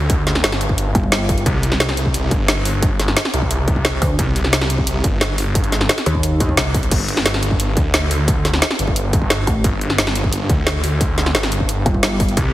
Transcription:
Already playing: detuned saw bass D2
0.10 kick, closed hi-hat
0.27 snare, closed hi-hat
0.35 snare
0.44 detuned saw bass G1, snare, closed hi-hat
0.52 snare, closed hi-hat
0.61 closed hi-hat
0.69 kick
0.78 closed hi-hat
0.95 wobble bass G1, kick, closed hi-hat
1.03 kick
1.12 snare, closed hi-hat
1.29 kick, open hi-hat
1.38 closed hi-hat
1.46 detuned saw bass C2, kick, closed hi-hat
1.63 closed hi-hat
1.72 snare
1.80 snare, closed hi-hat
1.89 snare
1.97 closed hi-hat
2.06 kick
2.14 closed hi-hat
2.31 detuned saw bass G1, kick, closed hi-hat
2.48 snare, closed hi-hat
2.65 open hi-hat
2.82 kick, closed hi-hat
3.00 snare, closed hi-hat
3.08 snare
3.17 snare, closed hi-hat
3.25 snare
3.34 detuned saw bass C2, closed hi-hat
3.42 kick
3.51 closed hi-hat
3.68 detuned saw bass C2, kick, closed hi-hat
3.76 kick
3.85 snare, closed hi-hat
4.02 wobble bass D2, kick, open hi-hat
4.19 detuned saw bass C2, kick, closed hi-hat
4.36 closed hi-hat
4.44 snare
4.53 snare, closed hi-hat
4.61 snare
4.70 closed hi-hat
4.78 kick
4.87 closed hi-hat
5.04 detuned saw bass G1, kick, closed hi-hat
5.21 snare, closed hi-hat
5.38 open hi-hat
5.55 kick, closed hi-hat
5.64 closed hi-hat
5.72 snare, closed hi-hat
5.81 snare
5.89 snare, closed hi-hat
5.98 snare, closed hi-hat
6.06 wobble bass D#2, closed hi-hat
6.15 kick
6.23 closed hi-hat
6.40 kick, closed hi-hat
6.49 kick
6.57 detuned saw bass C2, snare, closed hi-hat
6.74 kick, open hi-hat
6.83 closed hi-hat
6.91 detuned saw bass G1, kick, closed hi-hat, crash
7.09 closed hi-hat
7.17 snare
7.26 snare, closed hi-hat
7.34 snare
7.43 closed hi-hat
7.51 kick
7.60 closed hi-hat
7.77 detuned saw bass D2, kick, closed hi-hat
7.94 snare, closed hi-hat
8.11 open hi-hat
8.28 kick, closed hi-hat
8.45 snare, closed hi-hat
8.53 snare
8.62 snare, closed hi-hat
8.71 snare
8.79 detuned saw bass G1, closed hi-hat
8.88 kick
8.96 closed hi-hat
9.13 detuned saw bass G1, kick, closed hi-hat
9.22 kick
9.30 snare, closed hi-hat
9.47 wobble bass A1, kick, open hi-hat
9.64 detuned saw bass G1, kick, closed hi-hat
9.81 closed hi-hat
9.90 snare
9.98 snare, closed hi-hat
10.07 snare
10.15 closed hi-hat
10.24 kick
10.33 closed hi-hat
10.49 detuned saw bass D2, kick, closed hi-hat
10.67 snare, closed hi-hat
10.84 open hi-hat
11.01 kick, closed hi-hat
11.18 snare, closed hi-hat
11.26 snare
11.35 detuned saw bass G1, snare, closed hi-hat
11.43 snare, closed hi-hat
11.52 closed hi-hat
11.60 kick
11.69 closed hi-hat
11.86 wobble bass G1, kick, closed hi-hat
11.94 kick
12.03 snare, closed hi-hat
12.20 kick, open hi-hat
12.29 closed hi-hat
12.37 detuned saw bass C2, kick, closed hi-hat

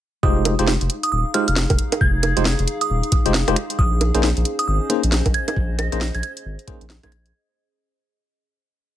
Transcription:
0.23 sub bass F1, tine electric piano G#3 D#4 F4 G4 C5, ambient pad D#4, synth bell D#6, kick
0.39 ambient pad F5
0.45 ambient pad G#4, closed hi-hat, high bongo
0.59 sub bass F1, tine electric piano G#3 D#4 F4 G4 C5, finger snap, closed hi-hat
0.67 snare
0.81 sub bass F1, closed hi-hat
0.90 closed hi-hat
1.03 synth bell D#6, closed hi-hat
1.12 sub bass D#1, synth bell D#6
1.34 tine electric piano G#3 D#4 F4 G4 C5, synth bell F6, finger snap, closed hi-hat
1.48 sub bass F1, synth bell F6, closed hi-hat
1.56 snare
1.70 sub bass F1, kick, closed hi-hat, high bongo
1.79 closed hi-hat
1.92 closed hi-hat, high bongo
2.01 sub bass F1, synth bell G#6, kick
2.23 closed hi-hat, high bongo
2.37 sub bass F1, tine electric piano G#3 D#4 F4 G4 C5, finger snap, closed hi-hat
2.45 snare
2.59 sub bass F1, closed hi-hat
2.68 closed hi-hat
2.81 synth bell D#6, closed hi-hat
2.90 sub bass D#1
3.03 closed hi-hat
3.12 kick, closed hi-hat
3.26 sub bass F1, tine electric piano G#3 D#4 F4 G4 C5, closed hi-hat
3.34 snare
3.48 sub bass F1, tine electric piano G#3 D#4 F4 G4 C5, finger snap, closed hi-hat, high bongo
3.56 ambient pad C#4, finger snap, closed hi-hat
3.70 closed hi-hat
3.79 sub bass A#1, ambient pad C5, synth bell D#6, kick
4.01 closed hi-hat, high bongo
4.14 sub bass A#1, tine electric piano A#3 C#4 D#4 G#4 C5, finger snap, closed hi-hat
4.23 snare
4.30 ambient pad D#5
4.37 sub bass A#1, closed hi-hat
4.45 closed hi-hat
4.59 synth bell D#6, closed hi-hat
4.68 sub bass G#1, synth bell D#6
4.90 tine electric piano A#3 C#4 D#4 G#4 C5, finger snap, closed hi-hat
5.03 sub bass A#1, closed hi-hat
5.12 snare
5.26 sub bass A#1, kick, closed hi-hat, high bongo
5.34 synth bell G#6, closed hi-hat
5.48 synth bell G#6, closed hi-hat, high bongo
5.56 sub bass A#1, kick
5.79 synth bell A#6, closed hi-hat, high bongo
5.92 sub bass A#1, tine electric piano A#3 C#4 D#4 G#4 C5, finger snap, closed hi-hat
6.01 snare
6.15 sub bass A#1, synth bell G#6, closed hi-hat
6.23 synth bell G#6, closed hi-hat
6.37 closed hi-hat
6.45 sub bass G#1
6.59 closed hi-hat
6.67 tine electric piano A#3 C#4 D#4 G#4 C5, kick, closed hi-hat
6.81 sub bass A#1, closed hi-hat
6.90 snare
7.03 sub bass A#1, tine electric piano A#3 C#4 D#4 G#4 C5, synth bell G#6, finger snap, kick, closed hi-hat, high bongo
7.12 finger snap, closed hi-hat
7.26 closed hi-hat

